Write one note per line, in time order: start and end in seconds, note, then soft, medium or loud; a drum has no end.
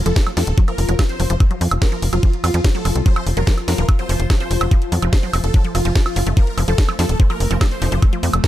0.00 8.48 F3 medium
0.00 6.39 F4 medium
0.06 0.13 F1 medium
0.06 0.10 F3 medium
0.06 0.24 A4 medium
0.06 closed hi-hat medium
0.16 kick loud
0.16 snare loud
0.16 closed hi-hat medium
0.27 0.31 F#3 medium
0.27 closed hi-hat soft
0.27 high woodblock medium
0.37 0.44 F2 medium
0.37 0.41 F3 medium
0.37 0.55 A4 loud
0.37 snare medium
0.37 open hi-hat loud
0.47 0.54 D#1 medium
0.47 closed hi-hat medium
0.58 0.62 F#3 medium
0.58 kick loud
0.58 closed hi-hat medium
0.68 0.72 F3 medium
0.68 0.92 A#4 medium
0.68 closed hi-hat soft
0.68 high woodblock soft
0.78 0.85 F1 loud
0.78 open hi-hat loud
0.89 0.96 F1 medium
0.89 0.93 F#3 medium
0.89 closed hi-hat medium
0.99 1.03 F3 medium
0.99 kick loud
0.99 snare loud
0.99 closed hi-hat medium
0.99 high woodblock medium
1.09 1.33 C5 loud
1.09 closed hi-hat soft
1.20 1.27 F1 medium
1.20 1.24 F#3 medium
1.20 open hi-hat loud
1.30 1.37 F1 medium
1.30 1.34 F3 medium
1.30 closed hi-hat medium
1.40 kick loud
1.40 closed hi-hat medium
1.40 high woodblock soft
1.51 1.55 F#3 medium
1.51 closed hi-hat soft
1.61 1.68 F2 loud
1.61 1.65 F3 medium
1.61 open hi-hat loud
1.71 1.78 F1 medium
1.71 closed hi-hat medium
1.71 high woodblock medium
1.82 1.86 F#3 medium
1.82 2.00 A#4 loud
1.82 kick loud
1.82 snare loud
1.82 closed hi-hat medium
1.92 1.96 F3 medium
1.92 closed hi-hat soft
2.02 2.09 F1 medium
2.02 open hi-hat loud
2.13 2.20 F1 medium
2.13 2.17 F#3 medium
2.13 2.31 F4 loud
2.13 closed hi-hat medium
2.13 high woodblock soft
2.23 2.27 F3 medium
2.23 kick loud
2.23 closed hi-hat medium
2.33 closed hi-hat soft
2.44 2.51 F2 loud
2.44 2.48 F#3 medium
2.44 2.62 F4 loud
2.44 open hi-hat loud
2.44 high woodblock medium
2.54 2.61 F2 medium
2.54 2.58 F3 medium
2.54 closed hi-hat medium
2.64 kick loud
2.64 snare loud
2.64 closed hi-hat medium
2.75 2.79 F#3 medium
2.75 2.93 A4 loud
2.75 closed hi-hat soft
2.85 2.92 F1 medium
2.85 2.89 F3 medium
2.85 open hi-hat loud
2.85 high woodblock soft
2.96 3.02 C2 medium
2.96 closed hi-hat medium
3.06 3.10 F#3 medium
3.06 3.24 C5 loud
3.06 kick loud
3.06 closed hi-hat medium
3.16 3.20 F3 medium
3.16 closed hi-hat soft
3.16 high woodblock medium
3.27 3.33 F1 medium
3.27 open hi-hat loud
3.37 3.44 F1 medium
3.37 3.41 F#3 medium
3.37 3.55 A#4 loud
3.37 closed hi-hat medium
3.47 3.51 F3 medium
3.47 kick loud
3.47 snare loud
3.47 closed hi-hat medium
3.58 closed hi-hat soft
3.58 high woodblock soft
3.68 3.75 F2 medium
3.68 3.72 F#3 medium
3.68 3.86 A#4 loud
3.68 snare medium
3.68 open hi-hat loud
3.78 3.85 D#1 medium
3.78 3.82 F3 medium
3.78 closed hi-hat medium
3.89 kick loud
3.89 closed hi-hat medium
3.89 high woodblock medium
3.99 4.03 F#3 medium
3.99 4.23 C5 loud
3.99 closed hi-hat soft
4.09 4.16 F1 loud
4.09 4.13 F3 medium
4.09 open hi-hat loud
4.20 4.27 F1 medium
4.20 closed hi-hat medium
4.30 4.34 F#3 medium
4.30 kick loud
4.30 snare loud
4.30 closed hi-hat medium
4.30 high woodblock soft
4.40 4.44 F3 medium
4.40 4.64 C5 loud
4.40 closed hi-hat soft
4.51 4.58 F1 loud
4.51 open hi-hat loud
4.61 4.68 F1 medium
4.61 4.65 F#3 medium
4.61 closed hi-hat medium
4.61 high woodblock medium
4.71 4.76 F3 medium
4.71 kick loud
4.71 closed hi-hat soft
4.82 closed hi-hat soft
4.92 4.99 F2 medium
4.92 4.96 F#3 medium
4.92 open hi-hat loud
5.02 5.09 F1 medium
5.02 5.07 F3 medium
5.02 closed hi-hat medium
5.02 high woodblock soft
5.13 5.31 C5 medium
5.13 kick loud
5.13 snare loud
5.13 closed hi-hat soft
5.23 5.27 F#3 medium
5.23 closed hi-hat soft
5.33 5.40 F1 loud
5.33 5.38 F3 medium
5.33 open hi-hat loud
5.33 high woodblock medium
5.44 5.51 F1 medium
5.44 5.62 A4 loud
5.44 closed hi-hat medium
5.54 5.58 F#3 medium
5.54 kick loud
5.54 closed hi-hat soft
5.64 5.69 F3 medium
5.64 closed hi-hat soft
5.75 5.82 F1 loud
5.75 5.79 D#3 medium
5.75 5.93 F4 loud
5.75 open hi-hat loud
5.75 high woodblock soft
5.85 5.92 F1 medium
5.85 5.89 F3 medium
5.85 closed hi-hat medium
5.96 6.02 F3 medium
5.96 kick loud
5.96 snare loud
5.96 closed hi-hat soft
6.06 6.24 F4 loud
6.06 closed hi-hat soft
6.06 high woodblock medium
6.16 6.23 F#1 loud
6.16 6.20 F3 medium
6.16 open hi-hat loud
6.27 6.33 F#1 medium
6.27 6.31 A3 medium
6.27 closed hi-hat medium
6.37 6.41 F3 medium
6.37 8.48 A3 medium
6.37 6.55 A#4 loud
6.37 kick loud
6.37 closed hi-hat medium
6.47 closed hi-hat soft
6.58 6.64 F1 loud
6.58 6.62 F3 medium
6.58 open hi-hat loud
6.58 high woodblock soft
6.68 6.75 F1 medium
6.68 6.72 F3 medium
6.68 6.86 A4 loud
6.68 closed hi-hat medium
6.78 kick loud
6.78 snare loud
6.78 closed hi-hat medium
6.89 6.93 F3 medium
6.89 closed hi-hat soft
6.89 high woodblock medium
6.99 7.06 F2 medium
6.99 7.03 F3 medium
6.99 7.17 A4 loud
6.99 snare medium
6.99 open hi-hat loud
7.09 7.16 D#1 medium
7.09 closed hi-hat medium
7.20 7.24 F3 medium
7.20 kick loud
7.20 closed hi-hat medium
7.30 7.34 F3 medium
7.30 7.54 A#4 medium
7.30 closed hi-hat soft
7.30 high woodblock soft
7.40 7.47 F1 loud
7.40 open hi-hat loud
7.51 7.58 F1 medium
7.51 7.55 F3 medium
7.51 7.62 C4 medium
7.51 closed hi-hat medium
7.61 7.65 F3 medium
7.61 kick loud
7.61 snare loud
7.61 closed hi-hat medium
7.61 high woodblock medium
7.71 7.95 C5 loud
7.71 closed hi-hat soft
7.82 7.89 F1 loud
7.82 7.86 F3 medium
7.82 7.93 D#4 medium
7.82 open hi-hat loud
7.92 7.99 F1 medium
7.92 7.96 F3 medium
7.92 closed hi-hat medium
8.02 kick loud
8.02 closed hi-hat medium
8.02 high woodblock soft
8.13 8.17 F3 medium
8.13 closed hi-hat soft
8.23 8.30 F2 loud
8.23 8.27 F3 medium
8.23 open hi-hat loud
8.33 8.40 F1 medium
8.33 closed hi-hat medium
8.33 high woodblock medium
8.44 8.48 F3 medium
8.44 8.48 A#4 loud
8.44 kick loud
8.44 snare loud
8.44 closed hi-hat medium